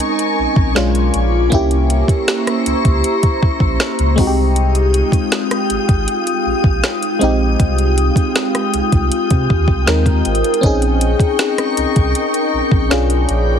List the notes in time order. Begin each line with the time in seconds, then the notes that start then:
Already playing: G#3 C4 C#4 D#4 A#4 G#5 C#6
0.00 closed hi-hat
0.19 closed hi-hat
0.39 A#1
0.56 A#1, kick
0.75 B1 G#3 C#4 D4 F4, snare, closed hi-hat
0.95 closed hi-hat
1.14 A#1, closed hi-hat
1.50 C2 A#3 C#4 E4 C5 A#5 C#6, kick, closed hi-hat
1.55 G4
1.71 closed hi-hat
1.90 closed hi-hat
2.08 kick, closed hi-hat
2.28 snare, closed hi-hat
2.47 cross-stick, closed hi-hat
2.66 C#2, closed hi-hat
2.85 C#2, kick, closed hi-hat
3.04 closed hi-hat
3.23 kick, closed hi-hat
3.43 A#1, kick
3.60 A#1, kick
3.80 snare, closed hi-hat
3.99 C#2, closed hi-hat
4.16 C2 G#3 C4 D#4 F4 G5 D#6, kick, open hi-hat
4.21 F#4
4.27 G4
4.56 closed hi-hat
4.75 closed hi-hat
4.94 closed hi-hat
5.12 kick, closed hi-hat
5.32 snare, closed hi-hat
5.51 cross-stick, closed hi-hat
5.70 G#1, closed hi-hat
5.89 G#1, kick, closed hi-hat
6.08 closed hi-hat
6.27 closed hi-hat
6.46 A#1
6.64 A#1, kick
6.84 snare, closed hi-hat
7.02 closed hi-hat
7.19 A#1 G#3 C4 D#4 G5, closed hi-hat
7.24 G4
7.60 C2, kick, closed hi-hat
7.78 closed hi-hat
7.98 closed hi-hat
8.16 kick, closed hi-hat
8.36 snare, closed hi-hat
8.55 cross-stick, closed hi-hat
8.74 C2, closed hi-hat
8.92 C2, kick, closed hi-hat
9.12 closed hi-hat
9.30 C3, kick, closed hi-hat
9.50 D#2, kick
9.68 C2, kick
9.86 D#2 G#3 C4 D#4 A#4, snare, closed hi-hat
10.06 kick, closed hi-hat
10.25 G#1, closed hi-hat, open hi-hat
10.35 closed hi-hat
10.44 closed hi-hat
10.54 closed hi-hat
10.61 A#1 C4 C#4 D#4 A#4 C#6, kick, closed hi-hat
10.66 G#4
10.82 closed hi-hat
11.01 closed hi-hat
11.20 kick, closed hi-hat
11.39 snare, closed hi-hat
11.58 cross-stick, closed hi-hat
11.77 C2, closed hi-hat
11.96 C2, kick, closed hi-hat
12.15 closed hi-hat
12.34 closed hi-hat
12.53 A#1
12.71 A#1, kick
12.90 B1 C#4 D4 F4 G#4, snare, closed hi-hat
13.10 closed hi-hat
13.29 A#1, closed hi-hat